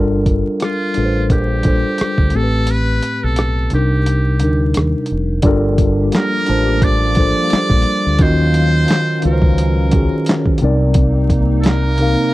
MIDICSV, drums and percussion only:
0, 0, Header, 1, 2, 480
1, 0, Start_track
1, 0, Key_signature, -2, "minor"
1, 0, Tempo, 689655
1, 1860, Time_signature, 4, 2, 24, 8
1, 8588, End_track
2, 0, Start_track
2, 0, Title_t, "Drums"
2, 181, Note_on_c, 9, 36, 82
2, 182, Note_on_c, 9, 42, 64
2, 251, Note_off_c, 9, 36, 0
2, 251, Note_off_c, 9, 42, 0
2, 417, Note_on_c, 9, 42, 70
2, 434, Note_on_c, 9, 37, 99
2, 487, Note_off_c, 9, 42, 0
2, 504, Note_off_c, 9, 37, 0
2, 655, Note_on_c, 9, 42, 62
2, 725, Note_off_c, 9, 42, 0
2, 904, Note_on_c, 9, 36, 78
2, 906, Note_on_c, 9, 42, 73
2, 974, Note_off_c, 9, 36, 0
2, 975, Note_off_c, 9, 42, 0
2, 1137, Note_on_c, 9, 42, 75
2, 1149, Note_on_c, 9, 36, 84
2, 1206, Note_off_c, 9, 42, 0
2, 1219, Note_off_c, 9, 36, 0
2, 1379, Note_on_c, 9, 42, 82
2, 1401, Note_on_c, 9, 37, 93
2, 1449, Note_off_c, 9, 42, 0
2, 1470, Note_off_c, 9, 37, 0
2, 1517, Note_on_c, 9, 36, 72
2, 1587, Note_off_c, 9, 36, 0
2, 1602, Note_on_c, 9, 42, 60
2, 1672, Note_off_c, 9, 42, 0
2, 1856, Note_on_c, 9, 42, 87
2, 1926, Note_off_c, 9, 42, 0
2, 2105, Note_on_c, 9, 42, 63
2, 2175, Note_off_c, 9, 42, 0
2, 2340, Note_on_c, 9, 42, 72
2, 2358, Note_on_c, 9, 37, 95
2, 2410, Note_off_c, 9, 42, 0
2, 2427, Note_off_c, 9, 37, 0
2, 2577, Note_on_c, 9, 42, 59
2, 2646, Note_off_c, 9, 42, 0
2, 2828, Note_on_c, 9, 42, 80
2, 2897, Note_off_c, 9, 42, 0
2, 3059, Note_on_c, 9, 42, 69
2, 3128, Note_off_c, 9, 42, 0
2, 3301, Note_on_c, 9, 42, 89
2, 3322, Note_on_c, 9, 37, 86
2, 3370, Note_off_c, 9, 42, 0
2, 3392, Note_off_c, 9, 37, 0
2, 3522, Note_on_c, 9, 42, 55
2, 3591, Note_off_c, 9, 42, 0
2, 3775, Note_on_c, 9, 42, 89
2, 3781, Note_on_c, 9, 36, 110
2, 3844, Note_off_c, 9, 42, 0
2, 3851, Note_off_c, 9, 36, 0
2, 4023, Note_on_c, 9, 36, 94
2, 4024, Note_on_c, 9, 42, 80
2, 4093, Note_off_c, 9, 36, 0
2, 4094, Note_off_c, 9, 42, 0
2, 4260, Note_on_c, 9, 42, 76
2, 4277, Note_on_c, 9, 38, 99
2, 4285, Note_on_c, 9, 39, 83
2, 4330, Note_off_c, 9, 42, 0
2, 4347, Note_off_c, 9, 38, 0
2, 4355, Note_off_c, 9, 39, 0
2, 4498, Note_on_c, 9, 42, 64
2, 4568, Note_off_c, 9, 42, 0
2, 4745, Note_on_c, 9, 36, 97
2, 4747, Note_on_c, 9, 42, 91
2, 4815, Note_off_c, 9, 36, 0
2, 4817, Note_off_c, 9, 42, 0
2, 4977, Note_on_c, 9, 42, 76
2, 4990, Note_on_c, 9, 36, 92
2, 5046, Note_off_c, 9, 42, 0
2, 5060, Note_off_c, 9, 36, 0
2, 5221, Note_on_c, 9, 42, 88
2, 5243, Note_on_c, 9, 38, 96
2, 5250, Note_on_c, 9, 39, 77
2, 5291, Note_off_c, 9, 42, 0
2, 5312, Note_off_c, 9, 38, 0
2, 5320, Note_off_c, 9, 39, 0
2, 5357, Note_on_c, 9, 36, 87
2, 5427, Note_off_c, 9, 36, 0
2, 5443, Note_on_c, 9, 42, 64
2, 5513, Note_off_c, 9, 42, 0
2, 5697, Note_on_c, 9, 42, 88
2, 5701, Note_on_c, 9, 36, 101
2, 5767, Note_off_c, 9, 42, 0
2, 5771, Note_off_c, 9, 36, 0
2, 5944, Note_on_c, 9, 42, 80
2, 6014, Note_off_c, 9, 42, 0
2, 6181, Note_on_c, 9, 42, 80
2, 6199, Note_on_c, 9, 38, 101
2, 6206, Note_on_c, 9, 39, 88
2, 6251, Note_off_c, 9, 42, 0
2, 6268, Note_off_c, 9, 38, 0
2, 6276, Note_off_c, 9, 39, 0
2, 6418, Note_on_c, 9, 42, 70
2, 6487, Note_off_c, 9, 42, 0
2, 6555, Note_on_c, 9, 36, 88
2, 6624, Note_off_c, 9, 36, 0
2, 6668, Note_on_c, 9, 42, 96
2, 6738, Note_off_c, 9, 42, 0
2, 6900, Note_on_c, 9, 42, 73
2, 6911, Note_on_c, 9, 36, 102
2, 6970, Note_off_c, 9, 42, 0
2, 6980, Note_off_c, 9, 36, 0
2, 7143, Note_on_c, 9, 42, 99
2, 7164, Note_on_c, 9, 38, 100
2, 7172, Note_on_c, 9, 39, 90
2, 7212, Note_off_c, 9, 42, 0
2, 7233, Note_off_c, 9, 38, 0
2, 7241, Note_off_c, 9, 39, 0
2, 7277, Note_on_c, 9, 36, 88
2, 7347, Note_off_c, 9, 36, 0
2, 7363, Note_on_c, 9, 42, 71
2, 7433, Note_off_c, 9, 42, 0
2, 7615, Note_on_c, 9, 42, 104
2, 7621, Note_on_c, 9, 36, 114
2, 7685, Note_off_c, 9, 42, 0
2, 7691, Note_off_c, 9, 36, 0
2, 7863, Note_on_c, 9, 36, 97
2, 7864, Note_on_c, 9, 42, 72
2, 7932, Note_off_c, 9, 36, 0
2, 7934, Note_off_c, 9, 42, 0
2, 8098, Note_on_c, 9, 42, 77
2, 8115, Note_on_c, 9, 38, 113
2, 8123, Note_on_c, 9, 39, 84
2, 8167, Note_off_c, 9, 42, 0
2, 8185, Note_off_c, 9, 38, 0
2, 8192, Note_off_c, 9, 39, 0
2, 8336, Note_on_c, 9, 42, 66
2, 8406, Note_off_c, 9, 42, 0
2, 8588, End_track
0, 0, End_of_file